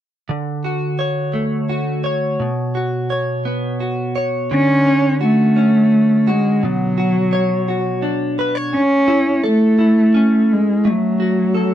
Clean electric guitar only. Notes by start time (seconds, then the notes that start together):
0.29 D3
0.64 F#4
0.99 C#5
1.33 A3
1.69 F#4
2.04 C#5
2.40 B2
2.75 F#4
3.10 C#5
3.45 B3
3.80 F#4
4.16 C#5
4.51 D3
4.86 C#4
5.21 F#4
5.56 C#4
6.27 F#4
6.63 B2
6.98 F#4
7.33 C#5
7.68 F#4
8.02 D4
8.39 B4
8.55 C#5
9.08 E4
9.44 A4
9.78 E4
10.14 C#4
10.85 A3
11.20 F#4
11.54 A4